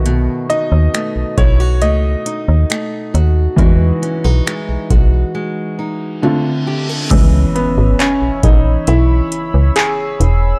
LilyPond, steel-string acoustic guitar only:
\new Staff \with { instrumentName = "Steel-string acoustic guitar" } { \time 4/4 \key cis \minor \tempo 4 = 68 b,8 dis'8 a8 e'16 fis'16 a8 dis'8 a8 fis'8 | e8 cis'16 dis'16 gis8 fis'8 gis8 dis'8 d8 g'16 a'16 | r1 | }